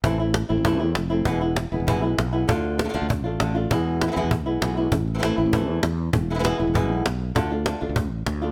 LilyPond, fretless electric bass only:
\new Staff \with { instrumentName = "Fretless electric bass" } { \clef bass \time 4/4 \tempo 4 = 197 a,,4. a,,16 a,,8. e,8 f,,4 | e,,4. e,,16 e,,8. b,,8 b,,4 | d,4. d,16 d,8. a,,8 a,,4 | e,4. e,16 e,8. b,,8 b,,4 |
a,,4. a,,16 a,,8. e,8 e,4 | e,,4. e,,16 e,,8. b,,8 b,,4 | d,4. d,16 d,8. a,,8 d,4 | }